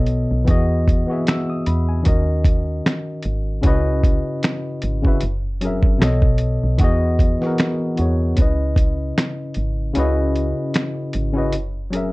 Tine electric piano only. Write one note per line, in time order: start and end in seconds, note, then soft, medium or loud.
0.00 0.43 B2 medium
0.00 0.44 B3 medium
0.00 0.44 A4 medium
0.00 0.45 C#5 medium
0.00 0.46 D#5 medium
0.45 1.04 E3 loud
0.45 1.05 B3 medium
0.45 1.06 F#4 loud
0.49 1.06 G#4 medium
0.49 1.07 D#5 loud
1.07 1.62 E3 medium
1.07 1.63 B3 medium
1.07 1.64 F#4 medium
1.11 1.64 G#4 medium
1.11 1.65 E5 medium
1.28 1.49 E6 medium
1.50 1.66 D#6 medium
1.67 1.87 B5 medium
1.89 2.26 G#5 medium
2.02 3.54 D#3 medium
2.02 3.55 C#4 medium
2.02 3.56 F#4 medium
2.07 3.56 A#4 medium
2.07 3.57 D#5 medium
3.61 4.95 C#3 loud
3.61 4.95 C#4 loud
3.61 4.96 E4 medium
3.61 4.96 F#4 medium
3.67 4.97 B4 loud
3.67 4.97 D#5 loud
5.02 5.21 C#3 medium
5.02 5.21 C#4 medium
5.02 5.22 E4 medium
5.02 5.22 F#4 medium
5.07 5.23 B4 medium
5.07 5.24 E5 loud
5.61 6.00 F#3 medium
5.61 6.01 C#4 medium
5.61 6.02 G#4 medium
5.65 6.03 A#4 medium
5.65 6.03 E5 loud
5.98 6.74 B2 medium
5.98 6.75 B3 medium
5.98 6.76 A4 medium
6.02 6.77 C#5 medium
6.02 6.77 D#5 loud
6.78 7.36 E3 loud
6.78 7.37 B3 loud
6.78 7.38 F#4 loud
6.83 7.39 G#4 medium
6.83 7.40 D#5 loud
7.41 7.94 E3 medium
7.41 7.96 B3 medium
7.41 7.96 F#4 medium
7.45 7.97 G#4 medium
7.45 7.98 A#4 medium
7.95 8.36 E3 medium
7.95 8.37 B3 medium
7.95 8.38 F#4 medium
8.00 8.38 G#4 medium
8.00 8.39 C#5 medium
8.35 9.87 C#3 medium
8.35 9.88 C#4 medium
8.35 9.88 E4 medium
8.40 9.89 B4 medium
8.40 9.90 D#5 medium
9.93 11.26 C#3 loud
9.93 11.27 C#4 loud
9.93 11.28 E4 loud
9.93 11.28 F#4 medium
9.98 11.29 B4 medium
9.98 11.29 D#5 loud
11.33 11.52 C#3 medium
11.33 11.52 C#4 medium
11.33 11.53 E4 medium
11.33 11.54 F#4 medium
11.37 11.54 B4 medium
11.37 11.55 D#5 medium
11.90 12.12 F#3 medium
11.90 12.12 C#4 medium
11.90 12.12 G#4 medium
11.95 12.12 A#4 medium
11.95 12.12 E5 loud